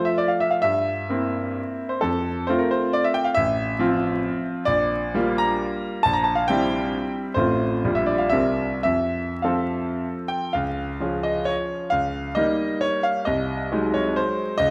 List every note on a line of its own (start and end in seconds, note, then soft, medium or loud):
0.00 0.60 F3 soft
0.00 0.61 A3 soft
0.00 0.61 F4 soft
0.05 0.18 E5 soft
0.18 0.30 D5 medium
0.28 0.40 F5 soft
0.40 0.52 E5 medium
0.51 0.63 F5 medium
0.62 1.09 G2 soft
0.62 1.91 E5 medium
1.09 1.99 A#3 soft
1.09 1.99 C4 soft
1.09 1.99 E4 soft
1.89 2.02 C5 soft
2.01 2.47 F2 soft
2.01 2.48 A4 medium
2.47 3.32 A3 soft
2.47 3.32 C4 soft
2.47 3.32 F4 medium
2.47 2.60 C5 medium
2.58 2.71 A#4 medium
2.71 2.94 C5 medium
2.93 3.04 D5 medium
3.04 3.15 E5 medium
3.14 3.25 G5 medium
3.25 3.35 F5 medium
3.35 3.78 A1 medium
3.35 4.45 E5 medium
3.79 4.63 F3 medium
3.79 4.63 C4 medium
3.79 4.63 F4 medium
4.65 5.13 A#1 soft
4.65 5.40 D5 medium
5.15 6.02 G3 soft
5.15 6.02 A#3 soft
5.15 6.03 F4 medium
5.38 6.05 A#5 medium
6.03 6.48 A#1 medium
6.03 6.15 A5 medium
6.13 6.25 A#5 medium
6.24 6.37 A5 medium
6.35 6.48 F5 medium
6.48 7.32 G3 soft
6.48 7.32 C4 soft
6.48 7.32 E4 medium
6.48 7.14 G5 medium
7.34 7.82 A1 soft
7.34 7.79 A3 soft
7.34 7.80 C4 soft
7.34 7.80 F4 soft
7.34 7.95 C5 medium
7.84 8.33 A#1 soft
7.84 8.30 G3 soft
7.84 8.31 D4 soft
7.84 8.31 F4 soft
7.95 8.08 E5 soft
8.06 8.20 D5 medium
8.18 8.32 F5 soft
8.29 8.84 C2 soft
8.29 8.82 G3 soft
8.29 8.82 C4 soft
8.29 8.82 A#4 soft
8.29 8.82 E5 medium
8.83 9.43 F2 soft
8.83 9.44 E5 medium
9.42 10.51 F3 soft
9.42 10.51 C4 soft
9.42 10.51 A4 soft
9.42 10.02 F5 soft
10.28 10.54 G5 medium
10.53 11.00 C#2 soft
10.53 11.25 F5 medium
11.00 11.89 F3 soft
11.00 11.89 C#4 soft
11.00 11.89 G#4 soft
11.23 11.48 D#5 medium
11.45 11.91 C#5 medium
11.90 12.36 C#2 soft
11.90 12.36 F5 medium
12.35 13.23 G3 soft
12.35 13.23 A#3 soft
12.35 13.23 D#4 soft
12.35 12.82 D#5 medium
12.81 13.04 C#5 medium
13.03 13.26 F5 medium
13.25 13.71 C2 soft
13.25 13.95 D#5 medium
13.72 14.55 F#3 soft
13.72 14.56 G#3 soft
13.72 14.56 D#4 soft
13.94 14.17 C#5 medium
14.16 14.59 C5 medium
14.58 14.70 C#2 medium
14.58 14.70 D#5 medium